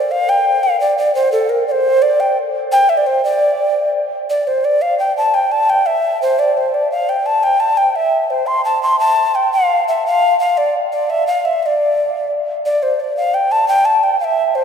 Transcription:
Already playing: D5
0.11 F5
0.29 G5
0.63 F5
0.80 D5
0.98 D5
1.15 C5
1.32 A4
1.50 A#4
1.68 C5 D5
2.02 D5
2.20 G5
2.72 G5
2.89 E5
2.97 D5
3.07 C5
3.25 D5
4.30 D5
4.47 C5
4.65 D5
4.82 F5
4.99 G5
5.17 A5
5.34 G5
5.52 A5
5.70 G5
5.86 E5
6.22 C5
6.39 D5
6.57 C5
6.74 D5
6.92 F5
7.09 G5
7.26 A5
7.43 G5
7.60 A5
7.77 G5
7.96 E5
8.30 C5
8.47 C6
8.65 A5
8.83 C6
9.00 A5
9.35 G5
9.53 F5
9.88 E5
10.07 F5
10.40 F5
10.57 D5
10.92 D5
11.10 E5
11.27 F5
11.45 E5
11.63 D5 E5
12.66 D5
12.83 C5
13.00 D5
13.17 F5
13.34 G5
13.52 A5
13.68 G5
13.85 A5
14.03 G5
14.20 F5
14.24 E5
14.55 C5

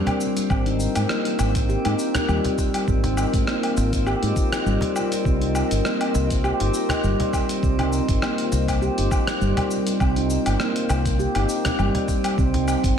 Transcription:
Already playing: C4 F4 A#4 C5 D5
0.07 cajon bass, closed hi-hat, low woodblock
0.21 shaker
0.37 cajon slap, closed hi-hat, shaker
0.50 G#1 C4, kick, low woodblock, shaker
0.66 D#4, closed hi-hat
0.80 shaker
0.95 G#2, closed hi-hat, low woodblock, shaker
1.09 A#3, cross-stick, shaker
1.17 D#5
1.25 closed hi-hat
1.39 G#1, cajon slap, low woodblock, shaker
1.55 kick, closed hi-hat, shaker
1.69 G4, shaker
1.85 G#2 D#4, cajon slap, closed hi-hat, low woodblock
1.99 shaker
2.15 cajon bass, cross-stick, cajon slap, closed hi-hat, shaker
2.28 D#2 G3, low woodblock, shaker
2.44 cajon bass, closed hi-hat
2.58 kick, cajon slap, shaker
2.74 closed hi-hat, low woodblock, shaker
2.88 G#1 C4, kick, shaker
3.04 D#4, cajon bass, closed hi-hat
3.17 low woodblock, shaker
3.33 G#2, kick, closed hi-hat, shaker
3.47 A#3, cross-stick, shaker
3.63 closed hi-hat, low woodblock
3.77 G#1, cajon slap, shaker
3.93 kick, closed hi-hat, shaker
4.07 G4, low woodblock, shaker
4.23 G#2 D#4, closed hi-hat
4.36 kick, shaker
4.53 cross-stick, closed hi-hat, low woodblock, shaker
4.66 G#1 G3, shaker
4.81 cajon bass, cajon slap, closed hi-hat
4.96 low woodblock, shaker
5.12 cajon slap, closed hi-hat, shaker
5.25 C2 C4, kick, shaker
5.41 D#4, closed hi-hat
5.55 low woodblock, shaker
5.71 G1, closed hi-hat, shaker
5.85 A#3, cross-stick, shaker
6.01 closed hi-hat, low woodblock
6.15 C2, cajon slap, shaker
6.30 kick, closed hi-hat, shaker
6.44 G4, low woodblock, shaker
6.60 G1 D#4, cajon slap, closed hi-hat
6.74 shaker
6.89 cajon bass, cross-stick, cajon slap, closed hi-hat, low woodblock, shaker
7.04 G1 G3, shaker
7.20 cajon bass, closed hi-hat
7.33 kick, cajon slap, low woodblock, shaker
7.49 closed hi-hat, shaker
7.63 C2 C4, kick, shaker
7.79 D#4, cajon bass, closed hi-hat, low woodblock
7.93 shaker
8.08 G1, kick, closed hi-hat, shaker
8.22 A#3, cross-stick, low woodblock, shaker
8.38 closed hi-hat
8.52 C2, cajon slap, shaker
8.68 kick, closed hi-hat, low woodblock, shaker
8.82 G4, shaker
8.98 G1 D#4, closed hi-hat
9.11 kick, low woodblock, shaker
9.27 cross-stick, closed hi-hat, shaker
9.41 G1 G3, shaker
9.57 cajon bass, closed hi-hat, low woodblock
9.71 shaker
9.87 cajon slap, closed hi-hat, shaker
10.00 C2 C4, kick, low woodblock, shaker
10.16 D#4, closed hi-hat
10.30 shaker
10.46 G1, closed hi-hat, low woodblock, shaker
10.60 A#3, cross-stick, shaker
10.76 closed hi-hat
10.89 C2, cajon slap, low woodblock, shaker
11.05 kick, closed hi-hat, shaker
11.19 G4, shaker
11.35 G1 D#4, cajon slap, closed hi-hat, low woodblock
11.49 shaker
11.65 cajon bass, cross-stick, cajon slap, closed hi-hat, shaker
11.79 G1 G3, low woodblock, shaker
11.95 cajon bass, closed hi-hat
12.08 kick, cajon slap, shaker
12.24 closed hi-hat, low woodblock, shaker
12.38 C2 C4, kick, shaker
12.54 D#4, cajon bass, closed hi-hat
12.68 low woodblock, shaker
12.84 G1, kick, closed hi-hat, shaker

